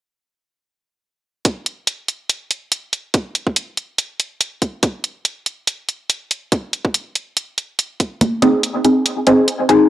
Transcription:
1.45 kick, closed hi-hat
1.66 closed hi-hat
1.87 closed hi-hat
2.08 closed hi-hat
2.30 closed hi-hat
2.51 closed hi-hat
2.72 closed hi-hat
2.93 closed hi-hat
3.14 kick, closed hi-hat
3.35 closed hi-hat
3.47 kick
3.56 closed hi-hat
3.77 closed hi-hat
3.98 closed hi-hat
4.20 closed hi-hat
4.41 closed hi-hat
4.62 kick, closed hi-hat
4.83 kick, closed hi-hat
5.04 closed hi-hat
5.25 closed hi-hat
5.46 closed hi-hat
5.67 closed hi-hat
5.89 closed hi-hat
6.10 closed hi-hat
6.31 closed hi-hat
6.52 kick, closed hi-hat
6.73 closed hi-hat
6.85 kick
6.94 closed hi-hat
7.15 closed hi-hat
7.37 closed hi-hat
7.58 closed hi-hat
7.79 closed hi-hat
8.00 kick, closed hi-hat
8.21 kick, closed hi-hat, high conga
8.42 C4 D#4 G#4, closed hi-hat, high conga
8.63 closed hi-hat
8.84 C4 D#4 G#4, closed hi-hat
9.06 closed hi-hat
9.27 C4 D#4 G#4, closed hi-hat
9.48 closed hi-hat
9.69 C4 D#4 G#4, closed hi-hat

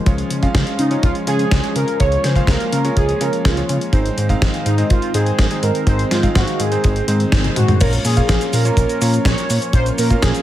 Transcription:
Already playing: F3 G#3
0.06 C#2 G#3 C#4 F4 C#5, kick, closed hi-hat
0.18 closed hi-hat
0.30 C#3, closed hi-hat
0.43 G#3 C#4 F4 F5, kick, closed hi-hat
0.55 C#2, kick, snare, closed hi-hat
0.67 closed hi-hat
0.79 C#3 D#4, closed hi-hat
0.91 G#3 C#4 F4 C#5, closed hi-hat
1.03 C#2 F4, kick, closed hi-hat
1.15 closed hi-hat
1.27 C#3 G#3 C#4 F4 G#4 C#5, closed hi-hat
1.39 closed hi-hat
1.51 C#2, kick, snare, closed hi-hat
1.64 G#3 C#4 F4 C#5, closed hi-hat
1.76 C#3 A#4, closed hi-hat
1.88 closed hi-hat
2.00 C#2 G#3 A#3 C#4 F4 C#5, kick, closed hi-hat
2.12 closed hi-hat
2.24 C#3 C5, snare, closed hi-hat
2.36 G#3 C#4 F4 F5, kick, closed hi-hat
2.47 C#2 A#4, kick, snare, closed hi-hat
2.60 closed hi-hat
2.73 C#3 A#4, closed hi-hat
2.85 G#3 C#4 F4 C#5, closed hi-hat
2.97 C#2 G#4, kick, closed hi-hat
3.09 closed hi-hat
3.21 C#3 G#3 C#4 F4 A#4 C#5, closed hi-hat
3.33 closed hi-hat
3.45 C#2 F4, kick, snare, closed hi-hat
3.57 G#3 C#4 F4 C#5, closed hi-hat
3.69 C#3, closed hi-hat
3.81 closed hi-hat
3.93 G#1 D#3 G#3 C4 D#4 C5, kick, closed hi-hat
4.06 closed hi-hat
4.18 G#2, closed hi-hat
4.29 G#3 C4 D#4 F5, kick, closed hi-hat
4.42 G#1, kick, snare, closed hi-hat
4.54 closed hi-hat
4.66 G#2 D#4, closed hi-hat
4.78 G#3 C4 D#4 C5, closed hi-hat
4.90 G#1 F4, kick, closed hi-hat
5.02 closed hi-hat
5.14 G#2 G#3 C4 D#4 G#4 C5, closed hi-hat
5.26 closed hi-hat
5.39 G#1, kick, snare, closed hi-hat
5.51 G#3 C4 D#4 C5, closed hi-hat
5.63 G#2 A#4, closed hi-hat
5.75 closed hi-hat
5.87 G#1 G#3 C4 D#4 C5, kick, closed hi-hat
5.99 closed hi-hat
6.11 G#2 F4, snare, closed hi-hat
6.23 G#3 C4 D#4 F5, kick, closed hi-hat
6.35 G#1 F#4, kick, snare, closed hi-hat
6.48 closed hi-hat
6.60 G#2 G#4, closed hi-hat
6.72 G#3 C4 D#4 C5, closed hi-hat
6.84 G#1, kick, closed hi-hat
6.96 closed hi-hat
7.08 G#2 G#3 C4 D#4 C5, closed hi-hat
7.20 closed hi-hat
7.32 G#1, kick, snare, closed hi-hat
7.44 G#3 C4 D#4 C5, closed hi-hat, high tom
7.56 G#2 F#4, closed hi-hat, mid tom
7.68 closed hi-hat, mid tom
7.80 A#1 F3 A#3 C#4 F4 A#4 C#5, kick, closed hi-hat, crash, cabasa
7.93 closed hi-hat, cabasa
8.05 A#2 G#4, open hi-hat, cabasa
8.17 A#3 C#4 F4 F5, kick, closed hi-hat, cabasa
8.29 A#1, kick, snare, closed hi-hat, cabasa
8.41 closed hi-hat, cabasa
8.53 A#2 A#4, open hi-hat, cabasa
8.65 A#3 C#4 F4 C#5, closed hi-hat, cabasa
8.77 A#1 A#4, kick, closed hi-hat, cabasa
8.89 closed hi-hat, cabasa
9.01 A#2 A#3 C#4 F4 C#5, open hi-hat, cabasa
9.14 closed hi-hat, cabasa
9.25 A#1 C#5, kick, snare, closed hi-hat, cabasa
9.38 A#3 C#4 F4 C#5, closed hi-hat, cabasa
9.50 A#2, open hi-hat, cabasa
9.62 closed hi-hat, cabasa
9.73 A#1 A#3 C#4 F4 C5 C#5, kick, closed hi-hat, cabasa
9.86 closed hi-hat, cabasa
9.98 A#2 A#4, open hi-hat, cabasa
10.10 A#3 C#4 F4 F5, kick, closed hi-hat, cabasa
10.22 A#1 G#4, kick, snare, closed hi-hat, cabasa
10.35 closed hi-hat, cabasa

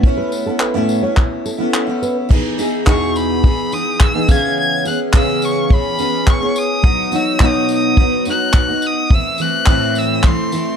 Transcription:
0.03 A3 B3 C#4 E4, kick
0.17 B4
0.32 tambourine
0.46 B3 C#4 E4 A4
0.60 B4, clap
0.74 A2 A3 B3 C#4 E4
0.89 tambourine
1.02 B3 C#4 E4 C#5
1.17 kick, clap
1.46 A4, tambourine
1.58 B3 C#4 E4
1.74 clap
1.87 B3 C#4 E4
2.02 B4, tambourine
2.29 E3 B3 D#4 G#4, kick, crash
2.58 E3 B3 D#4 G#4, tambourine
2.85 E2 B2 E3 B3 D#4 G#4 C#6, kick, clap
3.16 B5, tambourine
3.43 E3 B3 D#4 G#4, kick
3.72 E3 B3 D#4 G#4 D#6, tambourine
4.00 E6, kick, clap
4.13 E3 B3 D#4 G#4
4.28 C#3 E3 B3 C#4 G#4 G#6, kick, tambourine
4.60 G#6
4.84 E3 B3 C#4 G#4 F#6, tambourine
5.13 C#3 E3 B3 C#4 G#4 E6, kick, clap
5.42 C#6, tambourine
5.70 E3 B3 C#4 G#4 B5, kick
5.98 E3 B3 C#4 G#4, tambourine
6.27 C#6, kick, clap
6.40 B3 C#4 G#4
6.56 D#6, tambourine
6.82 F#3 B3 D#4 F#4, kick
7.11 F#3 B3 D#4 F#4, tambourine
7.15 E6
7.40 B2 F#3 B3 D#4 F#4, kick, clap
7.45 D#6
7.69 tambourine
7.74 D#6
7.97 F#3 B3 D#4 F#4, kick
8.25 F#3 B3 D#4 F#4, tambourine
8.30 F#6
8.54 kick, clap
8.68 B3 D#4 F#4
8.82 tambourine
8.86 D#6
9.10 E3 A3 C4 E4 E6, kick
9.38 E3 A3 C4 E4 F#6, tambourine
9.66 A2 E3 A3 C4 E4, kick, clap
9.95 E6, tambourine
10.23 E3 A3 C4 E4 C6, kick, clap
10.52 E3 A3 C4 E4, tambourine

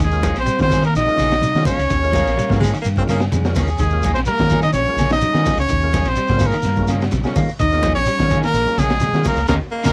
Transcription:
0.00 D#2 D#3 G#4, kick, snare, ride bell
0.04 G#3
0.11 G#3 A#3 C#4 F4, shekere
0.23 A#3 C#4 G#4, muted clean electric guitar stroke, kick, ride bell, high conga, shekere
0.36 A#1 C5, snare, ride bell, shekere
0.41 C4
0.46 G3, ride bell, shekere
0.59 D#3 F3 G#3 A#3 C#4 F4 C5, kick, snare, high conga, shekere
0.64 C4
0.70 A#3 C#4 G#4, kick, snare, ride bell, high conga, low conga, shekere
0.82 D#3 A#4, ride bell, shekere
0.88 A#3
0.96 A#1 D#4 D#5, snare, ride bell, shekere
1.06 G#3 A#3 C#4 F4, high conga, shekere
1.17 A#1 C#3 A#3 C#4 G#4, snare, ride bell, low conga, shekere
1.31 snare, ride bell, shekere
1.42 C3, snare, ride bell, high conga, shekere
1.55 D#3 G#3 A#3 C#4 F4, snare, shekere
1.65 A#3 C#4 C#5, muted clean electric guitar stroke, kick, open hi-hat, high conga, low conga, shekere
1.79 C#2, ride bell, shekere
1.90 D#2 D#3, kick, snare, ride bell, shekere
2.03 G#3 A#3 C#4 F4, shekere
2.12 F3 A#3 C#4 G#4, kick, snare, ride bell, high conga, shekere
2.27 A#1, snare, ride bell, shekere
2.37 G3, ride bell, high conga, shekere
2.49 G#2 F3 G#3 A#3 C#4 F4, kick, snare, high conga, shekere
2.60 G#3 A#3 C#4 G#4, kick, snare, open hi-hat, high conga, low conga, shekere
2.74 D#3, ride bell, shekere
2.82 G2 A#3, shekere
2.86 ride bell
2.96 G#3 A#3 C4 C#4 F4, kick, high conga, shekere
3.08 C#3 A#3 C#4 G#4, muted clean electric guitar stroke, snare, ride bell, low conga, shekere
3.20 snare, ride bell, shekere
3.32 F2 C3 G#3, snare, ride bell, high conga, low conga, shekere
3.45 G#3 A#3 C#4 F4, snare, shekere
3.55 D#2 A#3 C#4 G#4, kick, snare, open hi-hat, high conga, low conga, shekere
3.67 C#4 G#4, shekere
3.78 D#2 D#3 G#3 G#4, kick, ride bell, shekere
3.90 G#3 A#3 C#4 F4, shekere
4.03 F3 A#3 C#4 G#4, kick, ride bell, high conga, shekere
4.14 A#1 C4 C5, snare, ride bell, shekere
4.26 G3 A#4, ride bell, high conga, shekere
4.30 A#3
4.38 D#3 F3 G#3 A#3 C#4 F4, kick, snare, high conga, shekere
4.50 A#3 C#4 G#4, kick, snare, ride bell, high conga, low conga, shekere
4.62 D#3 D#4 D#5, snare, ride bell, shekere
4.73 A#1 C#4 C#5, ride bell, shekere
4.85 G#3 A#3 C#4, high conga, shekere
4.89 F4
4.96 A#1 C#3 A#3 C#4 G#4, snare, ride bell, shekere
5.00 low conga
5.10 D#4 D#5, snare, ride bell, shekere
5.21 ride bell, high conga, shekere
5.33 D#3 G#3 A#3 C#4 G#4, snare, shekere
5.38 F4
5.45 A#3 C#4 G#4, kick, open hi-hat, high conga, low conga, shekere
5.56 C#2 C#4 C#5, ride bell, shekere
5.69 D#2 D#3, kick, ride bell, shekere
5.81 G#3 A#3 C#4 F4, shekere
5.93 F3 C#4 G#4, muted clean electric guitar stroke, kick, snare, ride bell, high conga, shekere
6.04 A#1 C5, snare, ride bell, shekere
6.09 C4
6.16 G3, ride bell, shekere
6.28 G#2 C#3 G#3 A#3 C#4 F4, kick, snare, high conga, shekere
6.39 A#3 C#4 G#4, kick, open hi-hat, high conga, low conga, shekere
6.46 A#3 A#4
6.52 D#3, ride bell, shekere
6.62 G2, snare, ride bell, shekere
6.76 G#3 A#3 C#4 F4, kick, high conga, shekere
6.88 C#3 A#3 C#4 G#4, snare, ride bell, low conga, shekere
7.01 snare, ride bell, shekere
7.11 A#1 C3, snare, ride bell, high conga, low conga, shekere
7.23 G#3 A#3 C#4 F4, muted clean electric guitar stroke, muted fingered electric bass stroke, snare, shekere
7.36 D#3 A#3, muted clean electric guitar stroke, kick, open hi-hat, high conga, low conga, shekere
7.48 shekere
7.59 D#2 D#3 D#4 D#5, kick, ride bell, shekere
7.71 G#3 A#3 C#4 F4, snare, shekere
7.83 F3 A#3 C#4 G#4, kick, snare, ride bell, high conga, shekere
7.95 A#1 C#4 C#5, snare, ride bell, shekere
8.06 G3, ride bell, shekere
8.19 D#3 F3 G#3 A#3 C#4 F4, kick, snare, high conga, shekere
8.30 A#3 C#4 G#4, kick, ride bell, high conga, low conga, shekere
8.42 D#3 A#3 A#4, snare, ride bell, shekere
8.53 A#1, ride bell, shekere
8.66 G#3 A#3 C#4 F4, high conga, shekere
8.77 A#1 C#3 A#3 C#4 G#4, snare, ride bell, low conga, shekere
8.84 G#3
8.90 snare, ride bell, shekere
9.00 C3, snare, ride bell, high conga, low conga, shekere
9.13 D#3 G#3 A#3 C#4 F4, snare, shekere
9.24 A#3 C#4 G#4 A#4, kick, open hi-hat, high conga, low conga, shekere
9.29 A#3
9.36 C#2, ride bell, shekere
9.48 D#2 C#3 D#3 G#3 A#3 C#4 D#4 A#4, kick, snare, low conga, shekere
9.72 A#3
9.84 D#2 C#3 D#3 G#3 A#3 C#4 D#4 A#4, kick, snare, low conga, shekere
9.88 A#3

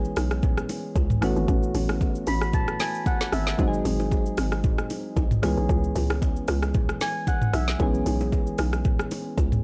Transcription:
Already playing: E3 G#3 B3 C#4 G#4
0.05 shaker
0.16 B1, cross-stick, open hi-hat, shaker
0.31 cross-stick, high bongo, shaker
0.43 kick, low conga, shaker
0.58 cross-stick, shaker
0.69 open hi-hat, low bongo, shaker
0.96 C#2, kick, high bongo, low bongo, shaker
1.10 mid tom, shaker
1.21 A1 E3 A3 B3 C#4 F#4, cross-stick, open hi-hat, shaker
1.36 G#1, shaker
1.48 A1, kick, low conga, shaker
1.63 shaker
1.75 A1, open hi-hat, low conga, shaker
1.89 cross-stick, low bongo, shaker
2.01 kick, high bongo, shaker
2.15 shaker
2.27 A1 B5, open hi-hat, shaker
2.42 cross-stick, high bongo, shaker
2.53 A5, kick, low conga, shaker
2.68 cross-stick, shaker
2.80 G#5, snare, open hi-hat, low bongo, shaker
2.95 shaker
3.06 F#5, kick, high bongo, low bongo, shaker
3.21 snare, shaker
3.32 G#1 E5, cross-stick, open hi-hat, shaker
3.47 snare, shaker
3.58 G#1 F#3 G#3 C4 D#4 F#4, kick, low conga, shaker
3.68 G#4
3.73 shaker
3.85 G#1, open hi-hat, low conga, shaker
4.00 low bongo, shaker
4.11 kick, high bongo, shaker
4.26 shaker
4.37 G#1, cross-stick, open hi-hat, shaker
4.52 cross-stick, high bongo, shaker
4.64 kick, low conga, shaker
4.78 cross-stick, shaker
4.90 open hi-hat, low bongo, shaker
5.17 B1, kick, high bongo, low bongo, shaker
5.31 mid tom, shaker
5.42 C#2 E3 G#3 B3 C#4 G#4, cross-stick, open hi-hat, shaker
5.57 B1, shaker
5.69 C#2, kick, low conga, shaker
5.84 shaker
5.96 C#2, open hi-hat, low conga, shaker
6.10 cross-stick, low bongo, shaker
6.22 kick, high bongo, shaker
6.36 shaker
6.48 C#2, cross-stick, open hi-hat, shaker
6.62 cross-stick, high bongo, shaker
6.74 kick, low conga, shaker
6.89 cross-stick, shaker
7.01 G#5, snare, open hi-hat, low bongo, shaker
7.27 F#5, kick, high bongo, low bongo, shaker
7.42 mid tom, shaker
7.54 B1 E5, cross-stick, open hi-hat, shaker
7.68 snare, shaker
7.79 B1 E3 G#3 B3 C#4 G#4, kick, low conga, shaker
7.94 shaker
8.06 B1, open hi-hat, low conga, shaker
8.21 low bongo, shaker
8.32 kick, high bongo, shaker
8.47 shaker
8.58 B1, cross-stick, open hi-hat, shaker
8.73 cross-stick, high bongo, shaker
8.85 kick, low conga, shaker
8.99 cross-stick, shaker
9.11 open hi-hat, low bongo, shaker
9.38 C#2, kick, high bongo, low bongo, shaker
9.52 mid tom, shaker

